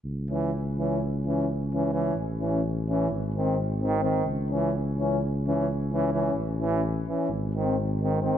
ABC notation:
X:1
M:9/8
L:1/8
Q:3/8=86
K:C#m
V:1 name="Euphonium"
z C z C z C z C C | z C z C z ^B, z B, B, | z C z C z C z C C | z C z C z ^B, z B, B, |]
V:2 name="Trombone" clef=bass
z E, z E, z E, z E, E, | z E, z E, z D, z D, D, | z E, z E, z E, z E, E, | z E, z E, z D, z D, D, |]
V:3 name="Tuba" clef=bass
C,,8- C,, | A,,,4 G,,,4- G,,, | C,,8- C,, | A,,,4 G,,,4- G,,, |]